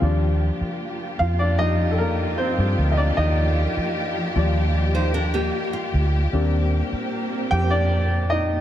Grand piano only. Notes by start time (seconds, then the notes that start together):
0.01 F3 G3 D4
1.19 F4 F5
1.39 D4 D5
1.59 F3 G3 D#4 D5 D#5
1.91 A4
1.98 A#3 A#4
2.38 C4 C5
2.92 D#5
2.97 D4 D5
3.17 D#4 D#5
4.36 F3 G3 D5
6.33 G3 A#3 C4 D4
7.51 G4 G5
7.70 D4 D5
8.30 D#4 D#5